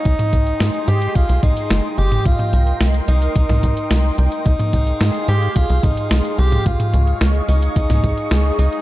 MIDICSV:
0, 0, Header, 1, 5, 480
1, 0, Start_track
1, 0, Key_signature, -4, "minor"
1, 0, Tempo, 550459
1, 47, Time_signature, 4, 2, 24, 8
1, 7687, End_track
2, 0, Start_track
2, 0, Title_t, "Analog synth pad"
2, 0, Program_c, 0, 89
2, 47, Note_on_c, 0, 68, 77
2, 47, Note_on_c, 0, 75, 67
2, 47, Note_on_c, 0, 79, 71
2, 47, Note_on_c, 0, 84, 87
2, 1948, Note_off_c, 0, 68, 0
2, 1948, Note_off_c, 0, 84, 0
2, 1967, Note_on_c, 0, 70, 78
2, 1968, Note_on_c, 0, 84, 83
2, 3852, Note_off_c, 0, 75, 0
2, 3868, Note_off_c, 0, 70, 0
2, 3868, Note_off_c, 0, 84, 0
2, 3887, Note_on_c, 0, 68, 77
2, 3887, Note_on_c, 0, 77, 72
2, 3887, Note_on_c, 0, 84, 87
2, 5772, Note_off_c, 0, 79, 0
2, 5788, Note_off_c, 0, 68, 0
2, 5788, Note_off_c, 0, 84, 0
2, 5807, Note_on_c, 0, 75, 72
2, 5808, Note_on_c, 0, 68, 80
2, 5808, Note_on_c, 0, 85, 89
2, 7687, Note_off_c, 0, 68, 0
2, 7687, Note_off_c, 0, 75, 0
2, 7687, Note_off_c, 0, 77, 0
2, 7687, Note_off_c, 0, 85, 0
2, 7687, End_track
3, 0, Start_track
3, 0, Title_t, "Tenor saxophone"
3, 0, Program_c, 1, 66
3, 0, Note_on_c, 1, 63, 103
3, 767, Note_on_c, 1, 67, 97
3, 780, Note_off_c, 1, 63, 0
3, 1007, Note_on_c, 1, 65, 101
3, 1020, Note_off_c, 1, 67, 0
3, 1241, Note_off_c, 1, 65, 0
3, 1246, Note_on_c, 1, 63, 92
3, 1727, Note_on_c, 1, 67, 98
3, 1740, Note_off_c, 1, 63, 0
3, 1968, Note_on_c, 1, 65, 95
3, 1981, Note_off_c, 1, 67, 0
3, 2452, Note_off_c, 1, 65, 0
3, 2686, Note_on_c, 1, 63, 88
3, 3612, Note_off_c, 1, 63, 0
3, 3648, Note_on_c, 1, 63, 97
3, 4573, Note_off_c, 1, 63, 0
3, 4609, Note_on_c, 1, 67, 108
3, 4848, Note_on_c, 1, 65, 107
3, 4861, Note_off_c, 1, 67, 0
3, 5088, Note_on_c, 1, 63, 91
3, 5101, Note_off_c, 1, 65, 0
3, 5568, Note_on_c, 1, 67, 101
3, 5581, Note_off_c, 1, 63, 0
3, 5808, Note_on_c, 1, 65, 88
3, 5821, Note_off_c, 1, 67, 0
3, 6292, Note_off_c, 1, 65, 0
3, 6529, Note_on_c, 1, 63, 88
3, 7453, Note_off_c, 1, 63, 0
3, 7488, Note_on_c, 1, 63, 99
3, 7687, Note_off_c, 1, 63, 0
3, 7687, End_track
4, 0, Start_track
4, 0, Title_t, "Analog synth bass"
4, 0, Program_c, 2, 38
4, 47, Note_on_c, 2, 36, 103
4, 135, Note_off_c, 2, 36, 0
4, 287, Note_on_c, 2, 36, 87
4, 463, Note_off_c, 2, 36, 0
4, 526, Note_on_c, 2, 44, 88
4, 615, Note_off_c, 2, 44, 0
4, 766, Note_on_c, 2, 44, 91
4, 943, Note_off_c, 2, 44, 0
4, 1007, Note_on_c, 2, 36, 86
4, 1095, Note_off_c, 2, 36, 0
4, 1126, Note_on_c, 2, 36, 94
4, 1215, Note_off_c, 2, 36, 0
4, 1247, Note_on_c, 2, 36, 92
4, 1335, Note_off_c, 2, 36, 0
4, 1487, Note_on_c, 2, 31, 100
4, 1575, Note_off_c, 2, 31, 0
4, 1727, Note_on_c, 2, 31, 82
4, 1903, Note_off_c, 2, 31, 0
4, 1967, Note_on_c, 2, 36, 92
4, 2055, Note_off_c, 2, 36, 0
4, 2206, Note_on_c, 2, 36, 100
4, 2383, Note_off_c, 2, 36, 0
4, 2446, Note_on_c, 2, 36, 84
4, 2623, Note_off_c, 2, 36, 0
4, 2687, Note_on_c, 2, 36, 103
4, 2863, Note_off_c, 2, 36, 0
4, 2927, Note_on_c, 2, 36, 91
4, 3015, Note_off_c, 2, 36, 0
4, 3047, Note_on_c, 2, 36, 97
4, 3135, Note_off_c, 2, 36, 0
4, 3167, Note_on_c, 2, 36, 103
4, 3255, Note_off_c, 2, 36, 0
4, 3407, Note_on_c, 2, 36, 93
4, 3583, Note_off_c, 2, 36, 0
4, 3647, Note_on_c, 2, 36, 86
4, 3735, Note_off_c, 2, 36, 0
4, 3887, Note_on_c, 2, 36, 100
4, 3975, Note_off_c, 2, 36, 0
4, 4127, Note_on_c, 2, 36, 83
4, 4303, Note_off_c, 2, 36, 0
4, 4367, Note_on_c, 2, 44, 84
4, 4455, Note_off_c, 2, 44, 0
4, 4607, Note_on_c, 2, 44, 89
4, 4783, Note_off_c, 2, 44, 0
4, 4847, Note_on_c, 2, 36, 89
4, 4935, Note_off_c, 2, 36, 0
4, 4968, Note_on_c, 2, 36, 89
4, 5056, Note_off_c, 2, 36, 0
4, 5087, Note_on_c, 2, 36, 101
4, 5175, Note_off_c, 2, 36, 0
4, 5327, Note_on_c, 2, 36, 92
4, 5415, Note_off_c, 2, 36, 0
4, 5567, Note_on_c, 2, 36, 100
4, 5743, Note_off_c, 2, 36, 0
4, 5808, Note_on_c, 2, 37, 98
4, 5896, Note_off_c, 2, 37, 0
4, 6047, Note_on_c, 2, 37, 98
4, 6224, Note_off_c, 2, 37, 0
4, 6288, Note_on_c, 2, 37, 79
4, 6464, Note_off_c, 2, 37, 0
4, 6527, Note_on_c, 2, 37, 101
4, 6703, Note_off_c, 2, 37, 0
4, 6768, Note_on_c, 2, 37, 96
4, 6856, Note_off_c, 2, 37, 0
4, 6888, Note_on_c, 2, 37, 89
4, 6976, Note_off_c, 2, 37, 0
4, 7007, Note_on_c, 2, 37, 98
4, 7095, Note_off_c, 2, 37, 0
4, 7248, Note_on_c, 2, 37, 96
4, 7424, Note_off_c, 2, 37, 0
4, 7487, Note_on_c, 2, 37, 83
4, 7575, Note_off_c, 2, 37, 0
4, 7687, End_track
5, 0, Start_track
5, 0, Title_t, "Drums"
5, 46, Note_on_c, 9, 42, 94
5, 47, Note_on_c, 9, 36, 117
5, 133, Note_off_c, 9, 42, 0
5, 134, Note_off_c, 9, 36, 0
5, 166, Note_on_c, 9, 42, 38
5, 166, Note_on_c, 9, 45, 86
5, 254, Note_off_c, 9, 42, 0
5, 254, Note_off_c, 9, 45, 0
5, 287, Note_on_c, 9, 36, 64
5, 287, Note_on_c, 9, 42, 68
5, 374, Note_off_c, 9, 36, 0
5, 374, Note_off_c, 9, 42, 0
5, 407, Note_on_c, 9, 42, 40
5, 494, Note_off_c, 9, 42, 0
5, 526, Note_on_c, 9, 38, 118
5, 526, Note_on_c, 9, 42, 97
5, 614, Note_off_c, 9, 38, 0
5, 614, Note_off_c, 9, 42, 0
5, 646, Note_on_c, 9, 42, 40
5, 734, Note_off_c, 9, 42, 0
5, 766, Note_on_c, 9, 42, 65
5, 854, Note_off_c, 9, 42, 0
5, 887, Note_on_c, 9, 42, 42
5, 974, Note_off_c, 9, 42, 0
5, 1006, Note_on_c, 9, 42, 89
5, 1007, Note_on_c, 9, 36, 114
5, 1094, Note_off_c, 9, 36, 0
5, 1094, Note_off_c, 9, 42, 0
5, 1127, Note_on_c, 9, 42, 40
5, 1214, Note_off_c, 9, 42, 0
5, 1247, Note_on_c, 9, 36, 103
5, 1247, Note_on_c, 9, 42, 67
5, 1247, Note_on_c, 9, 45, 58
5, 1334, Note_off_c, 9, 36, 0
5, 1334, Note_off_c, 9, 42, 0
5, 1334, Note_off_c, 9, 45, 0
5, 1367, Note_on_c, 9, 42, 39
5, 1454, Note_off_c, 9, 42, 0
5, 1487, Note_on_c, 9, 38, 115
5, 1487, Note_on_c, 9, 42, 84
5, 1574, Note_off_c, 9, 38, 0
5, 1574, Note_off_c, 9, 42, 0
5, 1727, Note_on_c, 9, 42, 38
5, 1814, Note_off_c, 9, 42, 0
5, 1846, Note_on_c, 9, 42, 41
5, 1846, Note_on_c, 9, 45, 85
5, 1933, Note_off_c, 9, 42, 0
5, 1933, Note_off_c, 9, 45, 0
5, 1966, Note_on_c, 9, 42, 93
5, 1967, Note_on_c, 9, 36, 120
5, 2053, Note_off_c, 9, 42, 0
5, 2054, Note_off_c, 9, 36, 0
5, 2087, Note_on_c, 9, 42, 39
5, 2087, Note_on_c, 9, 45, 85
5, 2174, Note_off_c, 9, 42, 0
5, 2174, Note_off_c, 9, 45, 0
5, 2207, Note_on_c, 9, 42, 66
5, 2294, Note_off_c, 9, 42, 0
5, 2327, Note_on_c, 9, 42, 39
5, 2414, Note_off_c, 9, 42, 0
5, 2447, Note_on_c, 9, 38, 113
5, 2447, Note_on_c, 9, 42, 93
5, 2534, Note_off_c, 9, 38, 0
5, 2534, Note_off_c, 9, 42, 0
5, 2567, Note_on_c, 9, 42, 39
5, 2654, Note_off_c, 9, 42, 0
5, 2687, Note_on_c, 9, 42, 66
5, 2774, Note_off_c, 9, 42, 0
5, 2807, Note_on_c, 9, 42, 43
5, 2894, Note_off_c, 9, 42, 0
5, 2927, Note_on_c, 9, 36, 121
5, 2927, Note_on_c, 9, 42, 93
5, 3014, Note_off_c, 9, 36, 0
5, 3014, Note_off_c, 9, 42, 0
5, 3046, Note_on_c, 9, 38, 39
5, 3046, Note_on_c, 9, 42, 41
5, 3046, Note_on_c, 9, 45, 85
5, 3134, Note_off_c, 9, 38, 0
5, 3134, Note_off_c, 9, 42, 0
5, 3134, Note_off_c, 9, 45, 0
5, 3167, Note_on_c, 9, 36, 62
5, 3167, Note_on_c, 9, 42, 67
5, 3254, Note_off_c, 9, 36, 0
5, 3254, Note_off_c, 9, 42, 0
5, 3287, Note_on_c, 9, 42, 39
5, 3374, Note_off_c, 9, 42, 0
5, 3407, Note_on_c, 9, 38, 109
5, 3407, Note_on_c, 9, 42, 86
5, 3494, Note_off_c, 9, 38, 0
5, 3494, Note_off_c, 9, 42, 0
5, 3647, Note_on_c, 9, 42, 39
5, 3734, Note_off_c, 9, 42, 0
5, 3766, Note_on_c, 9, 42, 40
5, 3854, Note_off_c, 9, 42, 0
5, 3886, Note_on_c, 9, 42, 92
5, 3887, Note_on_c, 9, 36, 117
5, 3974, Note_off_c, 9, 36, 0
5, 3974, Note_off_c, 9, 42, 0
5, 4007, Note_on_c, 9, 42, 35
5, 4007, Note_on_c, 9, 45, 90
5, 4094, Note_off_c, 9, 42, 0
5, 4094, Note_off_c, 9, 45, 0
5, 4126, Note_on_c, 9, 42, 66
5, 4127, Note_on_c, 9, 36, 64
5, 4214, Note_off_c, 9, 36, 0
5, 4214, Note_off_c, 9, 42, 0
5, 4246, Note_on_c, 9, 42, 37
5, 4334, Note_off_c, 9, 42, 0
5, 4366, Note_on_c, 9, 38, 117
5, 4366, Note_on_c, 9, 42, 89
5, 4453, Note_off_c, 9, 38, 0
5, 4453, Note_off_c, 9, 42, 0
5, 4486, Note_on_c, 9, 42, 39
5, 4573, Note_off_c, 9, 42, 0
5, 4606, Note_on_c, 9, 42, 59
5, 4693, Note_off_c, 9, 42, 0
5, 4727, Note_on_c, 9, 42, 39
5, 4814, Note_off_c, 9, 42, 0
5, 4847, Note_on_c, 9, 36, 113
5, 4847, Note_on_c, 9, 42, 90
5, 4934, Note_off_c, 9, 42, 0
5, 4935, Note_off_c, 9, 36, 0
5, 4967, Note_on_c, 9, 42, 41
5, 5055, Note_off_c, 9, 42, 0
5, 5087, Note_on_c, 9, 42, 67
5, 5087, Note_on_c, 9, 45, 57
5, 5088, Note_on_c, 9, 36, 110
5, 5175, Note_off_c, 9, 36, 0
5, 5175, Note_off_c, 9, 42, 0
5, 5175, Note_off_c, 9, 45, 0
5, 5207, Note_on_c, 9, 42, 37
5, 5295, Note_off_c, 9, 42, 0
5, 5327, Note_on_c, 9, 38, 120
5, 5327, Note_on_c, 9, 42, 83
5, 5414, Note_off_c, 9, 38, 0
5, 5414, Note_off_c, 9, 42, 0
5, 5447, Note_on_c, 9, 42, 35
5, 5534, Note_off_c, 9, 42, 0
5, 5568, Note_on_c, 9, 42, 35
5, 5655, Note_off_c, 9, 42, 0
5, 5688, Note_on_c, 9, 42, 39
5, 5688, Note_on_c, 9, 45, 83
5, 5775, Note_off_c, 9, 42, 0
5, 5775, Note_off_c, 9, 45, 0
5, 5807, Note_on_c, 9, 42, 84
5, 5808, Note_on_c, 9, 36, 110
5, 5894, Note_off_c, 9, 42, 0
5, 5895, Note_off_c, 9, 36, 0
5, 5927, Note_on_c, 9, 42, 37
5, 5927, Note_on_c, 9, 45, 85
5, 6015, Note_off_c, 9, 42, 0
5, 6015, Note_off_c, 9, 45, 0
5, 6048, Note_on_c, 9, 42, 62
5, 6135, Note_off_c, 9, 42, 0
5, 6168, Note_on_c, 9, 42, 37
5, 6255, Note_off_c, 9, 42, 0
5, 6288, Note_on_c, 9, 38, 113
5, 6288, Note_on_c, 9, 42, 86
5, 6375, Note_off_c, 9, 38, 0
5, 6375, Note_off_c, 9, 42, 0
5, 6408, Note_on_c, 9, 42, 38
5, 6495, Note_off_c, 9, 42, 0
5, 6528, Note_on_c, 9, 46, 73
5, 6615, Note_off_c, 9, 46, 0
5, 6648, Note_on_c, 9, 42, 39
5, 6735, Note_off_c, 9, 42, 0
5, 6768, Note_on_c, 9, 36, 108
5, 6768, Note_on_c, 9, 42, 86
5, 6855, Note_off_c, 9, 36, 0
5, 6855, Note_off_c, 9, 42, 0
5, 6888, Note_on_c, 9, 38, 37
5, 6888, Note_on_c, 9, 42, 40
5, 6888, Note_on_c, 9, 45, 92
5, 6975, Note_off_c, 9, 38, 0
5, 6975, Note_off_c, 9, 42, 0
5, 6975, Note_off_c, 9, 45, 0
5, 7008, Note_on_c, 9, 36, 59
5, 7008, Note_on_c, 9, 42, 61
5, 7095, Note_off_c, 9, 36, 0
5, 7095, Note_off_c, 9, 42, 0
5, 7129, Note_on_c, 9, 42, 38
5, 7216, Note_off_c, 9, 42, 0
5, 7248, Note_on_c, 9, 38, 107
5, 7248, Note_on_c, 9, 42, 83
5, 7335, Note_off_c, 9, 38, 0
5, 7335, Note_off_c, 9, 42, 0
5, 7488, Note_on_c, 9, 46, 75
5, 7575, Note_off_c, 9, 46, 0
5, 7608, Note_on_c, 9, 42, 37
5, 7687, Note_off_c, 9, 42, 0
5, 7687, End_track
0, 0, End_of_file